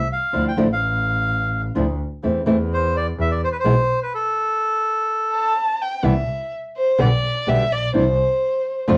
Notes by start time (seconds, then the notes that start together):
0.12 F5
0.33 D2 D3 F3 A3 D4 E4
0.48 G5
0.57 A1 D3 F3 A3 D4 E4
0.73 F5
1.75 D2 D3 F3 A3 D4 E4
2.23 E2 E3 A3 C4 E4
2.46 E2 E3 A3 C4 E4
2.73 C5
2.97 D5
3.18 E2 E5
3.31 D5
3.44 C5
3.52 B4
3.60 C5
3.65 B1 B2 E3 G#3 B3 E4
4.03 B4
4.15 A4
5.33 A5
5.81 G5
6.03 C2 C3 E3 G3 B3 E4 E5
6.78 C5
6.99 B1 B2 D3 G3 B3 G4 D5
7.47 B1 B2 D3 G3 B3 G4 E5
7.71 A#1 D5
7.94 C2 C3 E3 G3 D4 E4 C5
8.88 F2 D3 A3 C4 F4